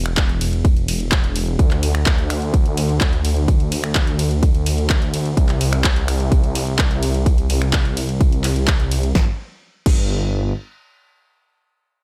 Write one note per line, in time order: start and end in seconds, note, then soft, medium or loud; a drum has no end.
0.00 1.57 E1 medium
0.06 finger snap medium
0.17 kick loud
0.17 clap loud
0.17 closed hi-hat medium
0.17 ride medium
0.29 closed hi-hat soft
0.41 open hi-hat loud
0.41 ride medium
0.53 closed hi-hat soft
0.65 kick loud
0.65 closed hi-hat medium
0.65 ride medium
0.77 closed hi-hat soft
0.88 open hi-hat loud
0.88 ride medium
1.00 closed hi-hat soft
1.12 kick loud
1.12 clap loud
1.12 closed hi-hat medium
1.12 ride medium
1.24 closed hi-hat soft
1.36 open hi-hat loud
1.36 ride medium
1.47 closed hi-hat soft
1.59 5.35 D2 medium
1.59 kick loud
1.59 closed hi-hat medium
1.59 ride medium
1.71 clap soft
1.71 closed hi-hat soft
1.83 open hi-hat loud
1.83 ride medium
1.95 finger snap medium
2.06 kick loud
2.06 clap loud
2.06 closed hi-hat medium
2.06 ride medium
2.18 closed hi-hat soft
2.30 finger snap medium
2.30 open hi-hat loud
2.30 ride medium
2.42 closed hi-hat soft
2.54 kick loud
2.54 closed hi-hat medium
2.54 ride medium
2.66 closed hi-hat soft
2.77 open hi-hat loud
2.77 ride medium
2.89 closed hi-hat soft
3.01 kick loud
3.01 clap loud
3.01 closed hi-hat medium
3.01 ride medium
3.13 closed hi-hat soft
3.25 open hi-hat loud
3.25 ride medium
3.37 closed hi-hat soft
3.48 kick loud
3.48 closed hi-hat medium
3.48 ride medium
3.60 closed hi-hat soft
3.72 open hi-hat loud
3.72 ride medium
3.84 finger snap medium
3.95 kick loud
3.95 clap loud
3.95 closed hi-hat medium
3.95 ride medium
4.07 closed hi-hat soft
4.19 open hi-hat loud
4.19 ride medium
4.31 closed hi-hat soft
4.43 kick loud
4.43 closed hi-hat medium
4.43 ride medium
4.55 closed hi-hat soft
4.66 open hi-hat loud
4.66 ride medium
4.78 closed hi-hat soft
4.90 kick loud
4.90 clap loud
4.90 closed hi-hat medium
4.90 ride medium
5.02 closed hi-hat soft
5.14 open hi-hat loud
5.14 ride medium
5.25 closed hi-hat soft
5.37 9.13 C2 medium
5.37 kick loud
5.37 closed hi-hat medium
5.37 ride medium
5.49 clap soft
5.49 closed hi-hat soft
5.61 open hi-hat loud
5.61 ride medium
5.73 finger snap medium
5.73 closed hi-hat soft
5.84 kick loud
5.84 clap loud
5.84 closed hi-hat medium
5.84 ride medium
5.96 closed hi-hat soft
6.08 finger snap medium
6.08 open hi-hat loud
6.08 ride medium
6.20 closed hi-hat soft
6.32 kick loud
6.32 closed hi-hat medium
6.32 ride medium
6.44 closed hi-hat soft
6.55 open hi-hat loud
6.55 ride medium
6.67 closed hi-hat soft
6.79 kick loud
6.79 clap loud
6.79 closed hi-hat medium
6.79 ride medium
6.91 closed hi-hat soft
7.03 open hi-hat loud
7.03 ride medium
7.14 closed hi-hat soft
7.26 kick loud
7.26 closed hi-hat medium
7.26 ride medium
7.38 closed hi-hat soft
7.50 open hi-hat loud
7.50 ride medium
7.62 finger snap medium
7.62 closed hi-hat soft
7.73 kick loud
7.73 clap loud
7.73 closed hi-hat medium
7.73 ride medium
7.85 closed hi-hat soft
7.97 open hi-hat loud
7.97 ride medium
8.09 closed hi-hat soft
8.21 kick loud
8.21 closed hi-hat medium
8.21 ride medium
8.32 closed hi-hat soft
8.44 clap soft
8.44 open hi-hat loud
8.44 ride medium
8.56 closed hi-hat soft
8.68 kick loud
8.68 clap loud
8.68 closed hi-hat medium
8.68 ride medium
8.80 closed hi-hat soft
8.91 open hi-hat loud
8.91 ride medium
9.03 closed hi-hat soft
9.15 9.28 G1 loud
9.15 kick loud
9.15 snare medium
9.86 10.53 G1 loud
9.86 kick loud
9.86 crash medium